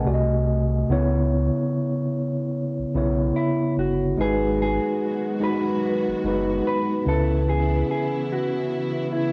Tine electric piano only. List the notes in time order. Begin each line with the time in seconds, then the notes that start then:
Already playing: G#5
0.04 C3 A3 F#4 D5
0.14 D#5
0.89 C#3 B3 E4 C#5
2.94 C#3 B3 E4 C#5
4.18 G#3 D#4 F#4 B4
5.40 G#3 D#4 F#4 B4
6.25 G#3 D#4 F#4 B4
7.05 C#3 C#4 E4 B4